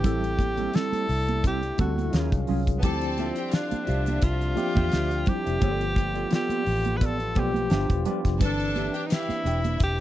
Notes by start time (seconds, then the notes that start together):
Already playing: C3 D3 G4
0.03 A1 G3 A3 C4 E4 A4, kick, closed hi-hat, muted conga, low conga
0.24 closed hi-hat
0.38 muted clean electric guitar stroke, kick, closed hi-hat, high conga
0.57 G3 C4 E4 A4, closed hi-hat, high conga
0.73 G3 C4 E4 A4, snare, closed hi-hat
0.93 closed hi-hat, high conga
1.09 C2, muted clean electric guitar stroke, open hi-hat, muted conga
1.28 muted clean electric guitar stroke, closed hi-hat, high conga
1.44 G3 C4 E4 G4 A4, kick, closed hi-hat
1.63 closed hi-hat
1.78 D2 G3 C4 E4 F#4 A4, kick, closed hi-hat, high conga
1.98 muted clean electric guitar stroke, closed hi-hat, high conga
2.12 D#2 D#3 F#3 G#3 C#4 F4 G#4 A#4 F5, snare, closed hi-hat
2.32 C2, muted clean electric guitar stroke, kick, closed hi-hat
2.47 C2 F#3 C#4 F4 G#4, open hi-hat, low conga
2.67 muted clean electric guitar stroke, kick, closed hi-hat
2.79 F3 B3 C4 A4 A5, closed hi-hat
2.83 D2 D3 F3 G3 C4 D4 E4 G4, kick, low conga
3.01 closed hi-hat
3.18 F4 G4 C5 E5, closed hi-hat, muted conga, high conga
3.35 G4 G5, closed hi-hat
3.51 D4 F4 F5, muted clean electric guitar stroke, snare, closed hi-hat
3.71 muted fingered electric bass stroke, closed hi-hat, high conga
3.86 C2 F4 G4 C5 E5 F5, closed hi-hat, muted conga
4.06 muted clean electric guitar stroke, closed hi-hat, high conga
4.21 C2 F4, muted clean electric guitar stroke, kick, closed hi-hat, muted conga
4.41 muted clean electric guitar stroke, closed hi-hat
4.55 F3 C4 G4 E5 G5, closed hi-hat, muted conga, high conga
4.75 E2 F4 G4 C5 E5, kick, closed hi-hat, high conga
4.92 D2 F4 G4 C5 E5, snare, closed hi-hat, muted conga
5.11 closed hi-hat
5.26 F3 C4 E4 G4, muted clean electric guitar stroke, kick, closed hi-hat, muted conga, low conga
5.45 F1 F4 G4 C5 E5, closed hi-hat
5.60 G1 F3 A3 B3 F4 G4 A4 B4 D5, kick, closed hi-hat, muted conga, low conga
5.81 closed hi-hat
5.96 muted clean electric guitar stroke, kick, closed hi-hat, muted conga, high conga
6.15 B3 F4 A4 D5, closed hi-hat
6.31 B3 F4 A4 D5, snare, closed hi-hat
6.35 G4
6.49 closed hi-hat, high conga
6.66 A1, open hi-hat
6.84 muted clean electric guitar stroke, closed hi-hat, high conga
6.97 B3 F4 B4, kick, closed hi-hat
7.02 A4 D5
7.20 muted clean electric guitar stroke, closed hi-hat
7.35 B1 F3 A3 B3 F4 G4 A4 D5, kick, closed hi-hat, high conga
7.40 G4
7.54 closed hi-hat, high conga
7.70 G1 F3 B3 D4 F4 G4 B4 E5, snare, closed hi-hat, muted conga
7.90 E1, muted clean electric guitar stroke, kick, closed hi-hat
8.05 F3 B3 D4 F4 G4 B4 D5, closed hi-hat, muted conga, low conga
8.25 F1, muted clean electric guitar stroke, kick, snare, closed hi-hat
8.39 G1 C3 E3 C4 D4 A4 B4 A5, kick, closed hi-hat, muted conga, low conga
8.45 D4
8.60 closed hi-hat
8.75 D4 G4 B4 E5, closed hi-hat, muted conga, high conga
8.94 G4 G5, closed hi-hat
9.07 D#4 G4 F5, closed hi-hat
9.11 E4, muted clean electric guitar stroke, snare
9.29 muted fingered electric bass stroke, closed hi-hat, high conga
9.44 E1 D4 E4 G4 B4 E5 G5, closed hi-hat, muted conga
9.64 muted clean electric guitar stroke, closed hi-hat, high conga
9.80 E1 G4, muted clean electric guitar stroke, kick, closed hi-hat